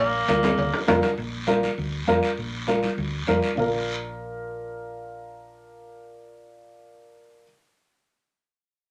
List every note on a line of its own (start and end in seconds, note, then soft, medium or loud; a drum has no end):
0.00 0.23 A#1 medium
0.00 0.84 A#3 medium
0.28 0.52 D2 medium
0.28 0.49 D4 medium
0.28 0.49 F4 medium
0.28 0.49 A#4 medium
0.28 cowbell medium
0.28 high conga medium
0.28 short guiro medium
0.43 high conga medium
0.43 high timbale loud
0.43 short guiro medium
0.58 0.70 D2 medium
0.58 cowbell medium
0.58 low conga medium
0.58 long guiro medium
0.74 low timbale medium
0.87 1.00 F2 loud
0.87 1.08 D4 medium
0.87 1.09 F4 medium
0.87 1.09 A#4 loud
0.87 cowbell medium
0.87 high conga medium
0.87 low conga medium
0.87 low timbale loud
0.87 short guiro medium
1.02 low timbale medium
1.02 short guiro medium
1.18 1.66 A#1 loud
1.18 long guiro medium
1.47 1.68 D4 medium
1.47 1.68 F4 medium
1.47 1.69 A#4 medium
1.47 high conga medium
1.47 short guiro medium
1.63 high conga medium
1.63 short guiro medium
1.78 2.02 D2 loud
1.78 long guiro medium
2.07 2.20 F2 medium
2.07 2.28 D4 medium
2.07 2.28 F4 medium
2.07 2.29 A#4 loud
2.07 high conga medium
2.07 short guiro medium
2.23 short guiro medium
2.38 2.86 A#1 medium
2.38 long guiro medium
2.67 2.88 D4 medium
2.67 2.88 F4 medium
2.67 2.89 A#4 medium
2.67 high conga medium
2.67 short guiro medium
2.83 high conga medium
2.83 short guiro medium
2.98 3.22 D2 loud
2.98 long guiro medium
3.27 3.40 F2 medium
3.27 3.48 D4 medium
3.27 3.48 F4 medium
3.27 3.49 A#4 medium
3.27 high conga medium
3.27 short guiro medium
3.42 short guiro medium
3.55 7.44 A#1 medium
3.55 7.43 D4 medium
3.55 7.44 F4 medium
3.55 low conga medium
3.55 long guiro medium
3.59 7.45 A#4 medium